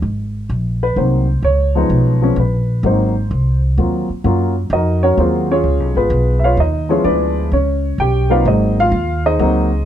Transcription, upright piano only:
0.83 B4
0.97 D#3 F#3 A#3 C4 C5
1.45 C#5
1.75 F3 G#3 B3 D#4
2.22 F3 G#3 B3 C#4 G#4
2.39 B4
2.84 F#3 A#3 C4 D#4 C5
3.78 F#3 A#3 C4 F4
4.24 F#3 A#3 C#4 F4
4.73 D#4 F#4 A#4 D#5
5.03 C#4 F#4 A#4 C#5
5.17 F#3 A#3 C4 F4 F#4 G#4 C5
5.51 C#4 F4 G#4 C#5
5.97 B3 F4 G#4 B4
6.39 E5
6.44 F4 B4 C#5 F5
6.60 D#4 D#5
6.89 F3 G#3 B3 C#4 E4 F4 G#4 C#5
7.04 D4 G#4 B4 D5
7.53 C#4 C#5
8.00 G4 G5
8.30 F#3 A#3 C4 D#4 F4 B4 D5 F5
8.47 D#4 G#4 C5 D#5
8.80 F4 F5
9.26 D#4 G#4 C5 D#5
9.40 F#3 A#3 C4 D#4

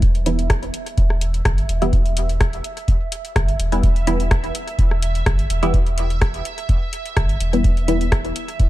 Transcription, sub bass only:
Already playing: E1
0.98 E1
1.45 G1
1.69 E1
3.36 G1
3.59 E1
4.79 E1
5.26 G1
5.50 E1
7.17 G1
7.41 E1
8.60 E1

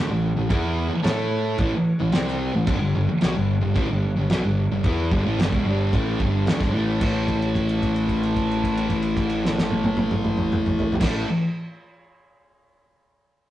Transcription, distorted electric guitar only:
0.09 A2 E3
0.37 A2 E3
0.49 E3 B3 E4
0.89 muted distorted electric guitar stroke
1.03 A3 E4 A4
1.59 A2 E3
1.99 A2 E3
2.12 C3 G3 C4
2.54 A2 E3
2.66 G2 D3
2.79 G2 D3
2.95 G2 D3
3.09 muted distorted electric guitar stroke
3.22 B2 F#3
3.35 G2 D3
3.61 G2 D3
3.74 A2 E3
3.89 G2 D3
4.17 G2 D3
4.30 B2 F#3
4.44 G2 D3
4.72 G2 D3
4.85 E3 B3 E4
5.12 G2 D3
5.26 A2 E3
5.39 G2 D3
5.52 E2 B2
5.66 G2 D3 G3
5.94 A2 E3 A3
6.20 G2 D3 G3
6.47 D3 A3
6.59 G2 D3
6.72 A2 E3 A3
7.00 A2 E3 A3
11.00 A2 E3
11.04 A3

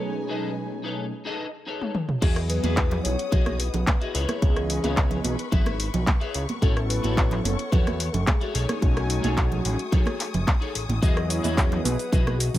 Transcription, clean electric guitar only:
Already playing: D#4 G#4 A4 B4 C#5
0.29 D#4 G#4 A4 B4 D#5
0.71 muted clean electric guitar stroke
0.84 D#4 G#4 A4 B4 C#5
1.25 D#4 G#4 A4 B4 D#5
1.66 D#4 G#4 A4 B4 C#5
2.21 E4 F#4 G#4 D#5
2.49 muted clean electric guitar stroke
2.63 E4 F#4 G#4 B4
3.31 E4 F#4 G#4 D#5
4.01 E4 F#4 G#4 D#5
4.14 E4 G#4 B4 C#5
4.69 muted clean electric guitar stroke
4.84 E4 G#4 B4 C#5
5.51 E4 G#4 B4 E5
6.21 E4 G#4 B4 C#5
6.62 E4 F#4 A4 C#5
6.89 muted clean electric guitar stroke
7.03 E4 F#4 A4 C#5
7.72 E4 F#4 A4 C#5
8.41 E4 F#4 A4 C#5
8.54 D#4 G#4 A4 C#5
9.09 muted clean electric guitar stroke
9.23 D#4 G#4 A4 C#5
9.92 D#4 G#4 A4 C#5
10.61 D#4 G#4 A4 C#5
11.02 E4 F#4 G#4 D#5
11.30 muted clean electric guitar stroke
11.43 E4 F#4 G#4 D#5
12.12 E4 F#4 G#4 D#5

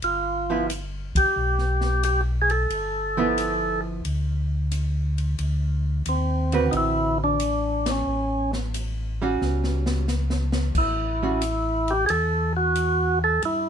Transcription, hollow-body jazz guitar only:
0.50 F3 B3 E4
3.17 F3 B3 E4
6.53 D3 C4 F#4 B4
9.22 G3 C#4 F#4
11.23 G3 C#4 F#4

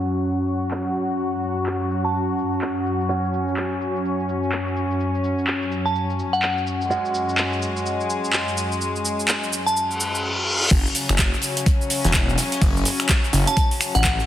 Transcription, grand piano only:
Already playing: C#4 F#4 C#5 F#5
3.09 C#4 F#4 C#5 F#5
6.90 C#4 F#4 C#5 F#5

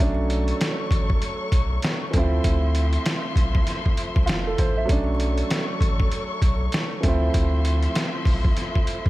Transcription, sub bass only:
0.00 B1
0.91 A1
1.52 B1
2.14 D2
2.45 D2
3.36 B1
4.16 C2
4.29 F1
4.59 A1
4.90 B1
5.81 A1
6.42 B1
7.04 D2
7.34 D2
8.26 B1
9.06 C2

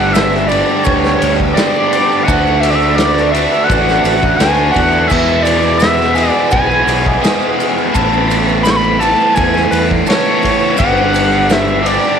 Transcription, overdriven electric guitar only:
Already playing: G2 D3 G3 B3 D4 G4
0.50 G2 D3 G3 B3 D4 G4
1.55 G2 D3 G3 B3 D4 G4
2.26 D3 A3 D4 F#4
3.33 D3 A3 D4 F#4
4.39 D3 A3 D4 F#4
5.08 E2 B2 E3 G#3 B3 G#4
6.15 E2 B2 E3 G#3 B3 G#4
7.21 E2 B2 E3 G#3 B3 G#4
7.92 A2 E3 A3 B3 A4
8.99 A2 E3 A3 B3 A4
10.06 A2 E3 A3 B3 A4
10.75 G2 D3 G3 B3 D4 G4
11.83 G2 D3 G3 B3 D4 G4

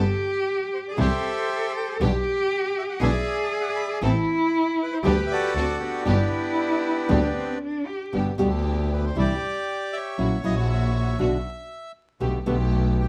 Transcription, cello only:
Already playing: G4
0.91 G#4
0.99 A4
2.01 G4
3.00 G#4
4.03 E4
5.03 G4
5.56 F#4
6.06 E4
7.09 D4
7.36 C4
7.61 D4
7.87 G4

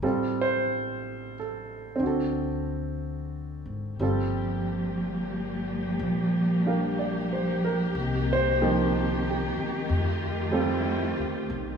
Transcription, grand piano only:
0.03 G3 C4 F4 A4
0.41 C5
1.40 A4
1.96 C4 D4
2.03 F#4 A4
4.00 G3 C4 F4 A4
6.66 D4 G4 A#4 F5
6.99 D5
7.33 C5
7.65 A#4
8.33 C5
8.62 F3 A#3 D#4 G4
9.30 G4
10.51 G3 C4 F4 A4

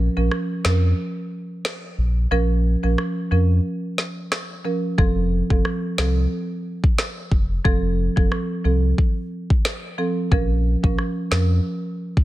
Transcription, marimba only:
0.17 F3 C#4 A#4
0.65 F3 C#4 A#4
2.31 F3 C#4 A#4
2.83 F3 C#4 A#4
3.31 F3 C#4 A#4
4.65 F3 C#4 A#4
4.98 F3 C4 A4
5.50 F3 C4 A4
5.98 F3 C4 A4
7.65 F3 C4 A4
8.17 F3 C4 A4
8.65 F3 C4 A4
9.98 F3 C4 A4
10.31 F3 C#4 A#4
10.83 F3 C#4 A#4
11.31 F3 C#4 A#4

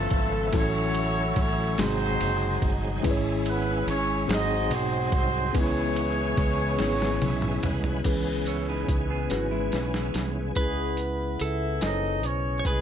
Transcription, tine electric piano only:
Already playing: C#3 F3 B3 C#4 A4 E5
0.52 A2 A3 C#4 E4 F#4 A4
1.78 C3 G#3 B3 D#4 F#4 G#4
1.84 C4
3.03 G#2 G#3 C#4 E4 G#4 B4
3.11 C#5
4.27 G#2 C4 D#4 F#4 G#4 C5
5.53 C#3 B3 C#4 D#4 G#4 B4
5.60 E4
6.78 B3 C#4 E4 G#4 C#5
8.05 C#3 E3 C#4 G#4 B4
9.30 C#4 D#4 G#4 B4
9.37 E4
10.55 C#3 C#4 E4 G#4 B4
11.81 C#4 E4 C5 G#5
11.88 C#5

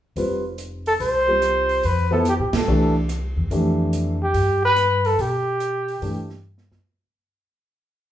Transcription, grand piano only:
0.17 G3 C4 F4 B4
1.28 G3 C4 F4 C5
2.11 F3 B3 E4 A4
2.67 E3 A3 D4 G4
3.51 E3 A3 D4 G4
6.02 E3 A3 D4 G4

